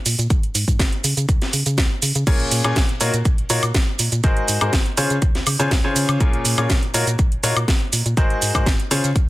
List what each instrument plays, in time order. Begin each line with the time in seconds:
0.06 fm bass A#2, open hi-hat, shaker
0.19 fm bass A#2, closed hi-hat, shaker
0.30 fm bass G#1, kick, closed hi-hat, shaker
0.43 closed hi-hat
0.55 fm bass G#2, open hi-hat, shaker
0.68 fm bass G#2, kick, closed hi-hat, shaker
0.79 fm bass G#1, kick, snare, closed hi-hat, shaker
0.93 closed hi-hat
1.04 fm bass C#3, open hi-hat, shaker
1.17 fm bass C#3, closed hi-hat, shaker
1.29 fm bass C#2, kick, closed hi-hat, shaker
1.42 snare, closed hi-hat
1.53 fm bass C#3, open hi-hat, shaker
1.66 fm bass C#3, closed hi-hat, shaker
1.78 fm bass C#2, kick, snare, closed hi-hat, shaker
2.02 fm bass C#3, open hi-hat, shaker
2.15 fm bass C#3, closed hi-hat, shaker
2.27 fm bass A#1, grand piano A#2 C#4 F4 G#4 A#4 C#5, kick, closed hi-hat, crash, shaker
2.40 closed hi-hat
2.51 fm bass A#2, open hi-hat, shaker
2.64 grand piano A#2 C#4 F4 G#4 A#4 C#5, fm bass A#2, closed hi-hat, high woodblock, shaker
2.76 fm bass A#1, kick, snare, closed hi-hat, shaker
2.89 closed hi-hat
3.01 fm bass A#2, grand piano A#3 D#4 F4 F#4 A#4 C#5, open hi-hat, shaker
3.14 fm bass A#2, closed hi-hat, shaker
3.25 fm bass A#1, kick, closed hi-hat, shaker
3.38 closed hi-hat
3.50 fm bass A#2, grand piano A#3 D#4 F4 F#4 A#4 C#5, open hi-hat, shaker
3.63 fm bass A#2, closed hi-hat, high woodblock, shaker
3.74 fm bass A#1, kick, snare, closed hi-hat, shaker
3.99 fm bass A#2, open hi-hat, shaker
4.12 fm bass A#2, closed hi-hat, shaker
4.24 fm bass G#1, grand piano G#3 D#4 F#4 G#4 A#4 C5, kick, closed hi-hat, shaker
4.37 closed hi-hat
4.48 fm bass G#2, open hi-hat, shaker
4.61 fm bass G#2, grand piano G#3 D#4 F#4 G#4 A#4 C5, closed hi-hat, high woodblock, shaker
4.73 fm bass G#1, kick, snare, closed hi-hat, shaker
4.86 closed hi-hat
4.97 grand piano C#3 C#4 F4 G#4 C5 C#5, fm bass C#3, open hi-hat, shaker
5.10 fm bass C#3, closed hi-hat, shaker
5.22 fm bass C#2, kick, closed hi-hat, shaker
5.35 snare, closed hi-hat
5.47 fm bass C#3, open hi-hat, high woodblock, shaker
5.59 fm bass C#3, grand piano C#3 C#4 F4 G#4 C5 C#5, closed hi-hat, shaker
5.71 fm bass C#2, kick, snare, closed hi-hat, shaker
5.84 grand piano C#3 C#4 F4 G#4 C5 C#5
5.96 fm bass C#3, open hi-hat, shaker
6.09 fm bass C#3, closed hi-hat, high woodblock, shaker
6.20 fm bass A#1, grand piano A#2 C#4 F4 G#4 A#4 C#5, kick, closed hi-hat, shaker
6.33 closed hi-hat
6.45 fm bass A#2, open hi-hat, shaker
6.58 fm bass A#2, grand piano A#2 C#4 F4 G#4 A#4 C#5, high woodblock, shaker
6.70 fm bass A#1, kick, snare, closed hi-hat, shaker
6.83 closed hi-hat
6.94 fm bass A#2, grand piano A#3 D#4 F4 F#4 A#4 C#5, open hi-hat, shaker
7.07 fm bass A#2, closed hi-hat, shaker
7.19 fm bass A#1, kick, closed hi-hat, shaker
7.32 closed hi-hat
7.43 fm bass A#2, grand piano A#3 D#4 F4 F#4 A#4 C#5, open hi-hat, shaker
7.56 fm bass A#2, closed hi-hat, high woodblock, shaker
7.68 fm bass A#1, kick, snare, closed hi-hat, shaker
7.93 fm bass A#2, open hi-hat, shaker
8.06 fm bass A#2, closed hi-hat, shaker
8.17 fm bass G#1, grand piano G#3 D#4 F#4 G#4 A#4 C5, kick, closed hi-hat, shaker
8.30 closed hi-hat
8.42 fm bass G#2, open hi-hat, shaker
8.55 fm bass G#2, grand piano G#3 D#4 F#4 G#4 A#4 C5, kick, closed hi-hat, high woodblock, shaker
8.66 fm bass G#1, kick, snare, closed hi-hat, shaker
8.80 closed hi-hat
8.91 grand piano C#3 C#4 F4 G#4 C5 C#5, fm bass C#3, open hi-hat, shaker
9.04 fm bass C#3, closed hi-hat, shaker
9.16 fm bass C#2, kick, closed hi-hat, shaker